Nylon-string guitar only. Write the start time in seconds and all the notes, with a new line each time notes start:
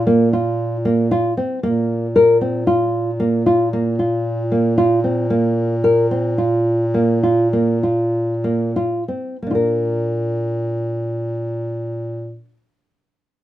0.07 A#3
0.33 F4
0.85 A#3
1.11 F4
1.37 C4
1.63 A#3
2.16 A#4
2.41 C4
2.67 F4
3.20 A#3
3.46 F4
3.73 A#3
3.99 F4
4.52 A#3
4.78 F4
5.04 C4
5.30 A#3
5.84 A#4
6.11 C4
6.38 F4
6.94 A#3
7.23 F4
7.53 A#3
7.83 F4
8.44 A#3
8.76 F4
9.08 C4
9.42 A#3
9.47 D4 F4
9.55 A#4